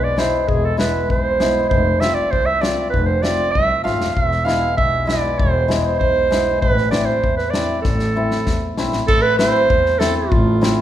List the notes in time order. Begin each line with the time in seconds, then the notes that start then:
Already playing: B1 G#3
0.04 D5
0.17 G#3 B3 E4 C5, snare
0.48 E1 G#4, kick
0.65 A4
0.77 G#3 B3 E4 B4, snare
1.10 B1 C5, kick
1.40 G#3 B3 E4, snare
1.69 F1 C5, kick
2.00 A3 C4 F4 E5, snare
2.14 D5
2.31 C2 C5, kick
2.46 E5
2.61 A3 C4 F4 D5, snare
2.90 F1 B4, kick
3.06 C5
3.22 A3 C4 F4 D5, snare
3.51 C2 E5, kick
3.84 G#1 A3 C4 F4 F5, snare
4.00 F1, snare
4.15 E1 E5, kick
4.32 snare
4.45 G#3 B3 E4 F5, snare
4.77 B1 E5, kick
5.06 G#3 B3 E4 D5, snare
5.39 E1 C5, kick
5.68 G#3 B3 E4, snare
5.80 C5 D5
5.99 B1 C5, kick
6.31 G#3 B3 E4, snare
6.61 A1 B4, kick
6.78 snare
6.91 A3 C4 E4 D5, snare
7.05 C5
7.23 E2, kick
7.37 B4, snare
7.50 A3 D5, snare
7.54 C4 E4
7.82 A1 A4, kick, snare
7.99 snare
8.16 A3 C4 E4
8.31 snare
8.46 E2, kick, snare
8.77 B1 A3 C4 E4, snare
8.93 A1, snare
9.08 A1 A4, kick, crash
9.22 B4
9.38 A3 C4 E4 C5, snare
9.70 E2, kick
9.86 snare
9.99 A3 C4 E4 A4, snare
10.17 F4
10.32 A1, kick
10.61 A3 C4 E4, snare